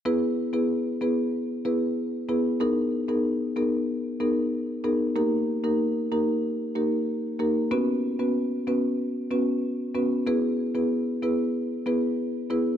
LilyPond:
\new Staff \with { instrumentName = "Marimba" } { \time 4/4 \key e \lydian \tempo 4 = 94 <b e' gis' b'>8. <b e' gis' b'>8. <b e' gis' b'>8 r8 <b e' gis' b'>16 r8. <b e' gis' b'>8 | <b dis' gis' ais'>8. <b dis' gis' ais'>8. <b dis' gis' ais'>8 r8 <b dis' gis' ais'>16 r8. <b dis' gis' ais'>8 | <ais dis' g' ais'>8. <ais dis' g' ais'>8. <ais dis' g' ais'>8 r8 <ais dis' g' ais'>16 r8. <ais dis' g' ais'>8 | <b cis' fis' b'>8. <b cis' fis' b'>8. <b cis' fis' b'>8 r8 <b cis' fis' b'>16 r8. <b cis' fis' b'>8 |
<b e' gis' b'>8. <b e' gis' b'>8. <b e' gis' b'>8 r8 <b e' gis' b'>16 r8. <b e' gis' b'>8 | }